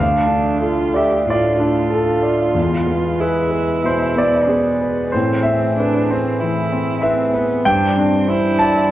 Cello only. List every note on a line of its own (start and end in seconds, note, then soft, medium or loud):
0.00 0.62 D4 soft
0.63 0.97 F4 soft
0.95 1.28 G4 soft
1.28 1.60 F4 soft
1.61 3.22 F4 soft
3.20 4.51 E4 soft
4.50 5.15 B3 soft
5.14 5.77 C4 medium
5.78 6.12 D4 soft
6.10 6.41 C4 soft
6.40 7.05 E4 medium
7.03 7.35 C4 soft
7.34 7.68 B3 soft
7.66 7.98 D4 soft
7.97 8.30 C4 medium
8.29 8.91 E4 medium